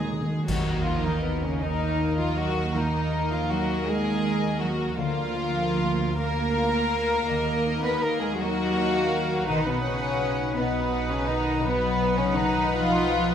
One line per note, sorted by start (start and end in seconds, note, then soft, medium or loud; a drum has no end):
0.00 0.26 D#2 soft
0.00 0.22 F#3 soft
0.00 1.87 F#3 soft
0.00 0.44 G#3 medium
0.00 0.22 D#4 soft
0.00 0.86 D#4 soft
0.00 0.44 G#4 medium
0.00 0.13 A#4 soft
0.00 1.24 A#4 soft
0.00 1.98 D#5 soft
0.00 0.13 D#6 soft
0.05 0.12 D#3 medium
0.05 3.98 F#4 soft
0.13 0.20 D#3 medium
0.21 0.28 D#3 medium
0.29 0.37 D#3 medium
0.38 0.45 D#3 medium
0.47 4.92 D#2 medium
0.47 4.38 D#3 medium
0.47 0.87 F#3 medium
0.47 1.58 A#3 medium
0.47 0.87 F#4 medium
0.47 1.58 A#4 medium
0.47 1.59 D#5 medium
0.47 concert bass drum medium
0.47 crash medium
0.85 1.06 F3 medium
0.85 1.61 D#4 soft
0.85 1.05 F4 medium
1.06 1.25 D#3 medium
1.06 1.25 D#4 medium
1.24 1.44 B2 medium
1.24 1.44 B3 medium
1.43 1.63 C#3 medium
1.43 1.62 C#4 medium
1.63 2.18 D#3 medium
1.63 2.72 A#3 medium
1.63 2.18 D#4 medium
1.63 3.11 D#4 medium
1.63 2.72 A#4 medium
1.63 2.72 D#5 medium
1.99 4.23 D#5 medium
2.18 2.37 F3 medium
2.18 2.37 F4 medium
2.37 2.74 F#3 medium
2.37 2.75 F#4 medium
2.37 3.49 A#4 medium
2.74 3.31 D#3 medium
2.74 4.92 A#3 medium
2.74 5.35 A#3 soft
2.74 3.31 D#4 medium
2.74 4.92 A#4 medium
2.74 4.92 D#5 medium
3.13 3.86 D#4 soft
3.31 3.49 F3 medium
3.31 3.50 F4 medium
3.49 3.86 F#3 medium
3.49 3.87 F#4 medium
3.49 4.60 A#4 soft
3.86 4.60 G#3 medium
3.86 5.00 D#4 medium
3.86 4.60 G#4 medium
4.25 5.00 D#5 medium
4.60 4.96 F#3 medium
4.60 4.97 F#4 medium
4.60 6.17 A#4 soft
4.96 7.29 D2 medium
4.96 7.32 D3 medium
4.96 6.15 F3 medium
4.96 6.15 A#3 medium
4.96 6.18 F4 medium
4.96 6.15 A#4 medium
4.96 6.15 F5 medium
5.36 9.26 A#3 medium
5.78 6.55 F4 soft
6.16 7.26 A#3 medium
6.16 7.80 A#3 medium
6.16 7.26 A#4 medium
6.16 7.80 A#4 loud
6.16 6.91 A#4 medium
6.16 7.26 F5 medium
6.56 7.32 F4 medium
6.93 8.02 A#4 medium
7.28 9.44 D#2 medium
7.28 9.51 D#3 medium
7.28 8.37 A#3 medium
7.28 8.37 A#4 medium
7.28 8.38 D#5 medium
7.66 8.39 D#4 medium
7.84 8.02 B3 medium
7.84 8.03 B4 medium
8.02 8.21 A#3 medium
8.02 8.21 A#4 medium
8.21 8.39 G#3 medium
8.21 8.39 G#4 medium
8.38 9.49 F#3 medium
8.38 9.46 A#3 medium
8.38 10.20 D#4 medium
8.38 9.48 F#4 loud
8.38 9.46 A#4 medium
8.38 8.93 D#5 medium
8.76 10.56 D#5 soft
8.93 9.48 F5 medium
9.12 9.51 A#4 medium
9.48 13.35 B1 medium
9.48 13.35 B2 medium
9.48 9.66 D#3 medium
9.48 9.66 D#4 medium
9.48 10.56 D#4 medium
9.48 10.56 B4 medium
9.48 10.56 F#5 medium
9.67 9.85 B2 medium
9.67 9.85 B3 medium
9.85 10.57 C#3 medium
9.85 11.99 B3 medium
9.85 10.56 C#4 medium
10.21 12.35 D#4 medium
10.56 11.11 B2 medium
10.56 11.10 B3 medium
10.56 11.62 D#4 medium
10.56 11.62 B4 medium
10.56 11.27 D#5 medium
10.56 11.62 F#5 medium
10.93 13.09 B4 medium
11.10 11.29 C#3 medium
11.10 11.28 C#4 medium
11.27 11.65 D#3 medium
11.27 11.63 D#4 medium
11.27 12.71 D#5 medium
11.64 12.18 B2 medium
11.64 13.35 F#3 medium
11.64 12.19 B3 loud
11.64 13.35 D#4 medium
11.64 13.35 B4 medium
11.64 13.35 F#5 medium
12.00 13.35 B3 medium
12.18 12.37 C#3 medium
12.18 12.36 C#4 medium
12.36 12.74 D#3 medium
12.36 12.73 D#4 medium
12.36 13.35 D#4 medium
12.72 13.35 F3 medium
12.72 13.35 F4 loud
12.72 13.35 D#5 medium
13.10 13.35 B4 medium